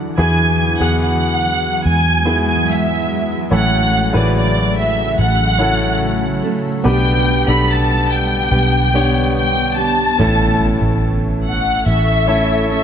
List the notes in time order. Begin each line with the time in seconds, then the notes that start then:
Already playing: D3 E3 F#3 D4 E4 F#4 A4
0.17 E2 E3 G#3 B3 E4 F#4 G#4 G#5
0.80 E2 B3 E4 F#4 G#4 F#5
1.03 F#5
1.85 E2 G#5
2.25 B3 E4 F#4 G#4
2.50 G#5
2.71 E5
3.50 A1 A2 C#3 E3 F#3 A3 C#4 E4 F#4 A4
3.54 A4 F#5
4.13 A1 C#3 E4 F#4 B4
4.17 D5
4.36 D5
4.79 E5
5.17 A1 F#3 A3 C#4 A4 F#5
5.58 C#4 E4 F#4 A4
6.42 F#3 A3 C#4 A4
6.84 B1 B2 D3 G3 B3 D4 G4 B4 G5
6.88 D4 G4
7.46 B1 B3 D4 G4 A4 B5
7.70 A5
8.11 G5
8.50 B1 G3 B3 D4 G4
8.94 B3 D4 G4 C#5
9.37 G5
9.76 B3 D4 G4 A5
10.16 A1 A2 E3 A3 C#4 E4 A4 E5 C#6, impact
10.21 E4 A4
10.81 A1
11.46 F#5
11.85 A1 A3 C#4 E4 A4 E5
12.26 A3 C#4 E4 A4
12.68 A3 C#4 E4 A4 E5